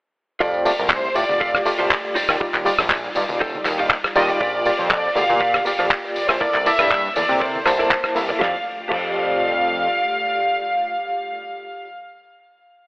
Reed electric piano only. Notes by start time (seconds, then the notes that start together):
0.40 A3 F4 G4 D5
0.65 A3 F4 G4 D5
1.15 A3 F4 G4 D5
1.66 A3 F4 G4 D5
2.40 G3 D#4 F4 D5
2.65 G3 D#4 F4 D5
3.15 G3 D#4 F4 D5
4.16 G3 D#4 F4 D5
4.41 A#3 F4 G4 D5
4.65 A#3 F4 G4 D5
5.15 A#3 F4 G4 D5
5.65 A#3 F4 G4 D5
6.41 A#3 E4 A4 D5
6.66 A#3 E4 A4 D5
7.16 A#3 E4 A4 D5
7.65 A#3 E4 C5 A5
8.15 A#3 E4 A4 E5
8.39 A3 F4 G4 D5
8.89 A3 F4 G4 D5